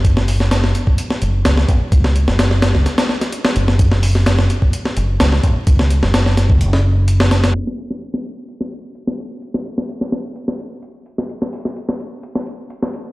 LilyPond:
<<
  \new Staff \with { instrumentName = "Fingered electric bass" } { \clef bass \time 4/4 \key fis \minor \tempo 4 = 128 fis,,4. r4 fis,,8 cis,8 a,,16 r16 | cis,8. fis,,4 cis,16 r4. fis,,8~ | fis,,4. r4 fis,,8 cis,8 a,,16 r16 | cis,8. fis,,4 cis,16 fis,,2 |
r1 | r1 | r1 | }
  \new DrumStaff \with { instrumentName = "Drums" } \drummode { \time 4/4 <hh bd>16 sn16 hho16 sn16 <hh sn>16 sn16 hh16 bd16 hh16 sn16 hh8 <hh sn>16 sn16 <hh bd>8 | <hh bd>16 sn16 hh16 sn16 <hh sn>16 sn16 <hh sn>16 sn16 <hh sn>16 <hh sn>16 sn16 <hh sn>16 hh16 sn16 hh16 sn16 | <hh bd>16 sn16 hho16 sn16 <hh sn>16 sn16 hh16 bd16 hh16 sn16 hh8 <hh sn>16 sn16 <hh bd>8 | <hh bd>16 sn16 hh16 sn16 <hh sn>16 sn16 <hh sn>16 bd16 hh16 sn8. hh16 sn16 <hh sn>16 <hh sn>16 |
r16 sn16 hho16 sn16 hh16 sn16 hh8 hh16 sn16 hh8 hh16 sn16 hh8 | hh16 sn16 hh16 sn16 hh16 sn16 <hh sn>8 hh16 sn16 hh8 hh8 hh16 sn16 | hh16 sn16 hho16 sn16 hh16 sn16 hh8 hh16 sn16 hh8 hh16 sn16 hh8 | }
>>